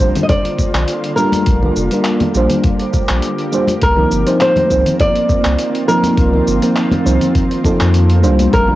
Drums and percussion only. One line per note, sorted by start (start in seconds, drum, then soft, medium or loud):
0.00 kick medium
0.00 shaker medium
0.16 closed hi-hat soft
0.16 low conga loud
0.16 shaker soft
0.29 kick loud
0.29 closed hi-hat medium
0.29 shaker soft
0.45 closed hi-hat soft
0.59 kick loud
0.59 high conga medium
0.59 shaker medium
0.75 clap medium
0.75 closed hi-hat soft
0.75 shaker soft
0.88 closed hi-hat medium
0.88 shaker soft
1.04 closed hi-hat soft
1.17 shaker medium
1.32 closed hi-hat soft
1.32 high conga loud
1.32 shaker soft
1.46 kick loud
1.46 closed hi-hat medium
1.46 shaker soft
1.63 low conga medium
1.76 shaker medium
1.91 closed hi-hat soft
1.91 shaker soft
2.05 clap medium
2.05 closed hi-hat medium
2.05 shaker soft
2.21 closed hi-hat soft
2.21 high conga loud
2.21 low conga loud
2.35 shaker medium
2.50 closed hi-hat soft
2.50 low conga medium
2.50 shaker soft
2.64 kick loud
2.64 closed hi-hat medium
2.64 shaker soft
2.80 closed hi-hat soft
2.94 kick loud
2.94 high conga medium
2.94 shaker medium
3.09 clap medium
3.09 closed hi-hat soft
3.09 shaker soft
3.22 closed hi-hat medium
3.22 shaker soft
3.39 closed hi-hat soft
3.53 shaker medium
3.67 closed hi-hat soft
3.67 high conga medium
3.67 shaker soft
3.82 kick loud
3.82 closed hi-hat medium
3.82 shaker soft
3.97 low conga medium
4.11 shaker medium
4.27 closed hi-hat soft
4.27 shaker soft
4.41 clap medium
4.41 closed hi-hat medium
4.41 shaker soft
4.56 closed hi-hat soft
4.56 high conga loud
4.56 low conga loud
4.70 kick medium
4.70 shaker medium
4.86 closed hi-hat soft
4.86 low conga medium
4.86 shaker medium
4.99 kick loud
4.99 closed hi-hat medium
4.99 shaker soft
5.15 closed hi-hat soft
5.29 kick loud
5.29 high conga medium
5.29 shaker medium
5.44 clap medium
5.44 closed hi-hat soft
5.44 shaker soft
5.58 closed hi-hat medium
5.58 shaker soft
5.75 closed hi-hat soft
5.89 shaker medium
6.03 closed hi-hat soft
6.03 high conga medium
6.03 shaker soft
6.17 kick loud
6.17 closed hi-hat medium
6.17 shaker soft
6.34 low conga medium
6.47 shaker medium
6.62 closed hi-hat soft
6.62 shaker soft
6.76 clap medium
6.76 closed hi-hat soft
6.76 shaker soft
6.91 closed hi-hat soft
6.91 high conga loud
6.91 low conga medium
7.06 shaker medium
7.21 closed hi-hat soft
7.21 low conga loud
7.21 shaker soft
7.35 kick loud
7.35 closed hi-hat medium
7.35 shaker soft
7.51 closed hi-hat soft
7.64 kick loud
7.64 high conga medium
7.64 shaker medium
7.80 clap medium
7.80 closed hi-hat soft
7.80 shaker soft
7.94 closed hi-hat medium
7.94 shaker soft
8.10 closed hi-hat soft
8.24 shaker medium
8.39 closed hi-hat soft
8.39 high conga medium
8.39 shaker soft
8.53 kick loud
8.53 closed hi-hat medium
8.53 shaker soft
8.67 low conga medium